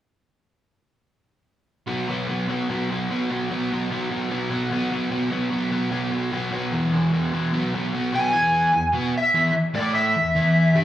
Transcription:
1.87 overdriven electric guitar B2 F#3 B3
2.08 overdriven electric guitar B2 F#3 B3
2.28 overdriven electric guitar B2 F#3 B3
2.48 overdriven electric guitar B2 F#3 B3
2.69 overdriven electric guitar B2 F#3 B3
2.90 overdriven electric guitar B2 F#3 B3
3.11 overdriven electric guitar B2 F#3 B3
3.30 overdriven electric guitar B2 F#3 B3
3.51 overdriven electric guitar B2 F#3 B3
3.72 overdriven electric guitar B2 F#3 B3
3.91 overdriven electric guitar B2 F#3 B3
4.10 overdriven electric guitar B2 F#3 B3
4.31 overdriven electric guitar B2 F#3 B3
4.50 overdriven electric guitar B2 F#3 B3
4.71 overdriven electric guitar B2 F#3 B3
4.90 overdriven electric guitar B2 F#3 B3
5.10 overdriven electric guitar B2 F#3 B3
5.31 overdriven electric guitar B2 F#3 B3
5.51 overdriven electric guitar B2 F#3 B3
5.71 overdriven electric guitar B2 F#3 B3
5.91 overdriven electric guitar B2 F#3 B3
6.12 overdriven electric guitar B2 F#3 B3
6.32 overdriven electric guitar B2 F#3 B3
6.52 overdriven electric guitar B2 F#3 B3
6.72 overdriven electric guitar E2 B2 E3
6.93 overdriven electric guitar E2 B2 E3
7.13 overdriven electric guitar E2 B2 E3
7.33 overdriven electric guitar E2 B2 E3
7.53 overdriven electric guitar B2 F#3 B3
7.74 overdriven electric guitar B2 F#3 B3
7.94 overdriven electric guitar B2 F#3 B3
8.13 overdriven electric guitar B2 F#3 B3, lead electric guitar G#5
8.33 overdriven electric guitar E2 E3
8.74 overdriven electric guitar E2
8.93 overdriven electric guitar B2 B3
9.14 lead electric guitar E5, muted overdriven electric guitar stroke
9.34 overdriven electric guitar E2 E3
9.54 muted overdriven electric guitar stroke
9.74 overdriven electric guitar A2 A3, lead electric guitar D5
9.95 lead electric guitar E5
10.15 overdriven electric guitar E2
10.35 overdriven electric guitar E2 E3
10.75 overdriven electric guitar G2 G3

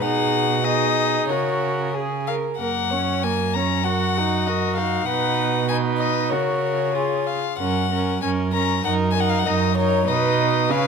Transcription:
0.01 cello B2, viola D#4, violin G#4 F#5
0.64 viola D#4, violin G#4 D#5
1.29 cello C#3, viola F#4, violin A#4 C#5
1.94 violin G#4, viola G#4
2.27 viola A#4, violin F5
2.58 cello F#2, viola A#3, violin A#4 F#5
2.91 viola C#4, violin C#5
3.23 viola A#3, violin A#4 G#5
3.53 viola C#4, violin C#5 A#5
3.84 viola F#4, violin A#4 F#5
4.17 viola D#4, violin F#4
4.47 viola F#4, violin A#4 D#5
4.76 viola D#4, violin F#4 F5
5.06 cello B2, viola D#4, violin B4 F#5
5.68 viola D#4, violin B4 G#5
5.98 violin D#5
6.30 cello C#3, viola F#4, violin A#4 C#5
6.94 viola F4, violin G#4
7.27 violin F5
7.59 cello F#2, viola C#4, violin A#4 F#5
7.92 viola C#4, violin A#4
8.22 cello F#2, viola C#4, violin A#4 G#5
8.53 viola C#4, violin A#4 A#5
8.84 cello F#2, viola D#4, violin A#4 F#5
9.11 violin A#4 G#5
9.15 viola D#4
9.20 violin F#5
9.29 violin F5
9.39 violin F#5
9.45 cello F#2, viola D#4, violin A#4 D#5
9.76 viola D#4, violin A#4 C#5
10.06 cello B2, viola D#4, violin B4 D#5
10.69 cello C#3, viola C#4, violin B4 F5

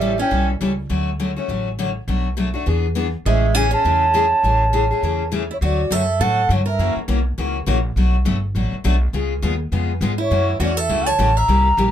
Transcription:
Already playing: upright bass A1, steel-string acoustic guitar G3, bansuri E5
0.01 steel-string acoustic guitar E3 G3 C#4 E4 A4
0.18 steel-string acoustic guitar C#4 E4 A4, bansuri G5
0.31 upright bass B1, steel-string acoustic guitar E3 G3 C#4 E4 A4
0.61 upright bass C#2, steel-string acoustic guitar E3 G3 C#4 E4 A4
0.89 upright bass D2, steel-string acoustic guitar D3 F#3 A3 C#4 F#4
1.20 steel-string acoustic guitar D3 F#3 A3 C#4 F#4
1.36 steel-string acoustic guitar A3 C#4 F#4
1.48 upright bass A1, steel-string acoustic guitar D3 F#3 A3 C#4 F#4
1.79 steel-string acoustic guitar D3 F#3 A3 C#4 F#4
2.08 upright bass B1, steel-string acoustic guitar B2 F#3 A3 D4 F#4
2.37 steel-string acoustic guitar B2 F#3 A3 D4 F#4
2.54 steel-string acoustic guitar A3 D4 F#4
2.66 upright bass E2, steel-string acoustic guitar E3 B3 D4 G#4
2.95 steel-string acoustic guitar E3 B3 D4 G#4
3.26 upright bass A1, steel-string acoustic guitar C#3 E3 G#3 A3 C#4 G#4, bansuri E5
3.54 steel-string acoustic guitar C#3 E3 A3 C#4 G#4, bansuri G#5
3.71 steel-string acoustic guitar A3 C#4 G#4, bansuri A5
3.85 upright bass E2, steel-string acoustic guitar C#3 E3 A3 C#4 G#4
4.14 steel-string acoustic guitar C#3 E3 A3 C#4 G#4
4.43 upright bass A1, steel-string acoustic guitar C#3 E3 A3 C#4 G#4
4.73 steel-string acoustic guitar C#3 E3 A3 C#4 G#4
4.91 steel-string acoustic guitar A3 C#4 G#4
5.02 upright bass E2, steel-string acoustic guitar C#3 E3 A3 C#4 G#4
5.32 steel-string acoustic guitar C#3 E3 A3 C#4 G#4
5.51 steel-string acoustic guitar E4, bansuri C#5
5.61 upright bass D2, steel-string acoustic guitar D3 F#3 A3 C#4 F#4, bansuri D5
5.91 upright bass F#2, steel-string acoustic guitar D3 F#3 A3 C#4 F#4 A4, bansuri E5
6.20 upright bass A2, steel-string acoustic guitar D3 F#3 A3 C#4 F#4 A4, bansuri F#5
6.49 upright bass G2, steel-string acoustic guitar D3 F#3 A3 C#4 F#4
6.66 steel-string acoustic guitar A#4, bansuri E5
6.79 upright bass F#2, steel-string acoustic guitar C#3 E3 A#3 C#4 F#4
6.96 muted upright bass stroke
7.08 upright bass B1, steel-string acoustic guitar C#3 E3 A#3 C#4 F#4
7.38 upright bass C#2, steel-string acoustic guitar C#3 E3 A#3 C#4 F#4
7.66 upright bass A#1, steel-string acoustic guitar C#3 E3 A#3 C#4 F#4
7.96 upright bass B1, steel-string acoustic guitar B2 F#3 A3 D4 F#4
8.25 upright bass G1, steel-string acoustic guitar B2 F#3 A3 D4 F#4
8.55 upright bass A1, steel-string acoustic guitar B2 F#3 A3 D4 F#4
8.73 muted upright bass stroke
8.84 upright bass B1, steel-string acoustic guitar B2 F#3 A3 D4 F#4
9.13 upright bass C#2, steel-string acoustic guitar C#3 G#3 B3 F4 G#4
9.42 upright bass D#2, steel-string acoustic guitar C#3 G#3 B3 F4 G#4
9.72 upright bass F2, steel-string acoustic guitar C#3 G#3 B3 F4 G#4
10.01 upright bass G#2, steel-string acoustic guitar C#3 G#3 B3 F4 G#4
10.18 steel-string acoustic guitar E4, bansuri C#5
10.31 upright bass F#2, steel-string acoustic guitar C#3 E3 A3 C#4 F#4
10.60 upright bass E2, steel-string acoustic guitar C#3 E3 A3 C#4 F#4, bansuri D5
10.77 steel-string acoustic guitar A4, bansuri E5
10.89 upright bass C#2, steel-string acoustic guitar C#3 E3 A3 C#4 F#4
11.06 steel-string acoustic guitar C#5, bansuri A5
11.19 upright bass A1, steel-string acoustic guitar C#3 E3 A3 C#4 F#4
11.37 steel-string acoustic guitar E5, bansuri A#5
11.48 upright bass C2, steel-string acoustic guitar C3 G3 A#3 E4 G4
11.77 upright bass A#1, steel-string acoustic guitar C3 G3 A#3 E4 G4

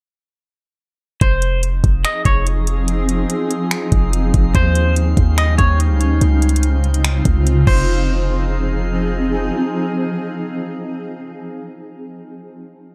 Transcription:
1.21 808-style bass F1, ambient pad F3 C4 D#4 G#4, synth texture D#4 G#4 F5, clean electric guitar C5, kick, closed hi-hat
1.42 closed hi-hat
1.63 closed hi-hat
1.84 808-style bass F1, kick, closed hi-hat
2.05 clean electric guitar D#5, finger snap, closed hi-hat
2.25 808-style bass F1, clean electric guitar C#5, kick, closed hi-hat
2.47 closed hi-hat
2.67 closed hi-hat
2.88 closed hi-hat
3.09 closed hi-hat
3.30 closed hi-hat
3.51 closed hi-hat
3.71 finger snap, closed hi-hat
3.92 808-style bass F1, kick, closed hi-hat
4.13 closed hi-hat
4.34 808-style bass F1, kick, closed hi-hat
4.55 808-style bass D#2, ambient pad G3 C#4, synth texture C#4 G4 C5, clean electric guitar C5, kick, closed hi-hat
4.75 closed hi-hat
4.96 closed hi-hat
5.17 808-style bass D#2, kick, closed hi-hat
5.38 clean electric guitar D#5, finger snap, closed hi-hat
5.58 808-style bass D#2, clean electric guitar C#5, kick, closed hi-hat
5.80 closed hi-hat
5.90 808-style bass C#2
6.01 closed hi-hat
6.06 808-style bass D#2
6.21 808-style bass C#2, synth texture D#4, closed hi-hat
6.42 closed hi-hat
6.49 closed hi-hat
6.56 closed hi-hat
6.63 closed hi-hat
6.84 closed hi-hat
6.94 closed hi-hat
7.05 finger snap, closed hi-hat
7.25 808-style bass C#2, kick, closed hi-hat
7.47 closed hi-hat
7.67 808-style bass F1, ambient pad F3 C4 D#4 G#4, synth texture D#4 G#4 F5, clean electric guitar C5, kick, crash

